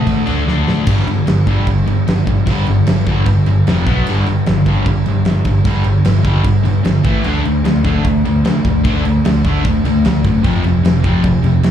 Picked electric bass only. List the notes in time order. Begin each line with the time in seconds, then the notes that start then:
0.07 A1
0.28 D2
0.47 D2
0.68 A2
0.87 G1
1.08 G1
1.28 G1
1.68 G1
1.88 G1
2.08 G2
2.27 G1
2.47 G1
2.68 G1
2.89 G1
3.07 G1
3.27 G1
3.48 G1
3.68 F1
3.87 B1
4.10 G1
4.29 G1
4.50 G1
4.86 G1
5.09 G1
5.28 G2
5.45 G1
5.65 G1
5.87 G1
6.06 G1
6.25 G1
6.44 G1
6.67 G1
6.86 G1
7.05 A1
7.26 D2
7.46 D2
7.66 D2
8.06 D2
8.26 D2
8.46 D3
8.66 D2
8.85 D2
9.06 D2
9.26 D2
9.45 D2
9.64 D2
9.87 D2
10.06 D2
10.24 F#2
10.45 F1
10.65 F1
10.85 F1
11.24 F1
11.43 F1
11.62 F2